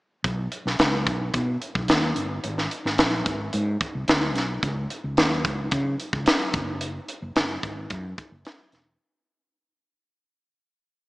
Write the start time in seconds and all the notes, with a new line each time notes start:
0.24 B1, kick, closed hi-hat
0.52 closed hi-hat
0.66 B1, snare
0.79 C#2, snare, closed hi-hat
1.07 B1, kick, closed hi-hat
1.34 B2, kick, closed hi-hat
1.62 closed hi-hat
1.75 B1, kick
1.88 D#2, snare, closed hi-hat
2.16 G1, closed hi-hat
2.44 G#1, closed hi-hat
2.58 snare
2.71 closed hi-hat
2.85 G#1, snare
2.98 A#1, snare, closed hi-hat
3.26 G#1, kick, closed hi-hat
3.53 G#2, closed hi-hat
3.81 kick, closed hi-hat
3.95 C2
4.08 D2, snare, closed hi-hat
4.35 B1, snare, closed hi-hat
4.63 C#2, kick, closed hi-hat
4.90 closed hi-hat
5.04 C#2
5.17 D#2, snare, closed hi-hat
5.45 C#2, kick, closed hi-hat
5.71 C#3, kick, closed hi-hat
6.00 closed hi-hat
6.13 C#2, kick
6.26 snare, closed hi-hat
6.54 F#1, kick, closed hi-hat
6.81 closed hi-hat
7.09 closed hi-hat
7.22 F#1
7.36 F#1, snare, closed hi-hat
7.63 G#1, kick, closed hi-hat
7.90 F#2, kick, closed hi-hat
8.18 kick, closed hi-hat
8.32 F#1
8.45 snare, closed hi-hat
8.72 E1, snare, closed hi-hat